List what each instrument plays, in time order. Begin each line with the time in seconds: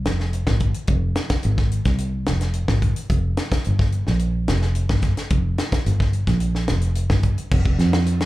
0.05 fingered electric bass F1, snare, closed hi-hat
0.20 snare
0.33 closed hi-hat
0.47 fingered electric bass G#1, kick, snare
0.60 kick, closed hi-hat
0.74 closed hi-hat
0.87 fingered electric bass F1, kick, closed hi-hat
1.15 snare, closed hi-hat
1.30 kick, snare, closed hi-hat
1.43 fingered electric bass G#1, closed hi-hat
1.58 kick, snare
1.71 closed hi-hat
1.85 fingered electric bass C2, kick, snare, closed hi-hat
1.98 closed hi-hat
2.26 fingered electric bass F1, snare, closed hi-hat
2.41 snare, closed hi-hat
2.54 closed hi-hat
2.68 fingered electric bass G#1, kick, snare
2.82 kick, closed hi-hat
2.96 closed hi-hat
3.10 fingered electric bass F1, kick, closed hi-hat
3.37 snare, closed hi-hat
3.52 kick, snare, closed hi-hat
3.64 fingered electric bass G1, closed hi-hat
3.79 kick, snare
3.92 closed hi-hat
4.07 fingered electric bass A#1, snare
4.19 closed hi-hat
4.48 fingered electric bass F1, snare, closed hi-hat
4.62 snare
4.75 closed hi-hat
4.89 fingered electric bass G1, kick, snare
5.02 kick, snare, closed hi-hat
5.17 snare, closed hi-hat
5.30 fingered electric bass F1, kick, closed hi-hat
5.58 snare, closed hi-hat
5.72 kick, snare, closed hi-hat
5.86 fingered electric bass G1, closed hi-hat
6.00 kick, snare
6.13 closed hi-hat
6.27 fingered electric bass A#1, kick, snare, closed hi-hat
6.40 closed hi-hat
6.55 snare
6.68 fingered electric bass F1, snare, closed hi-hat
6.81 closed hi-hat
6.95 closed hi-hat
7.10 fingered electric bass G1, kick, snare
7.23 kick, closed hi-hat
7.38 closed hi-hat
7.51 fingered electric bass F1, kick, crash
7.65 fingered electric bass F1, kick
7.79 fingered electric bass F2, snare, closed hi-hat
7.93 snare, closed hi-hat
8.06 closed hi-hat
8.20 snare, closed hi-hat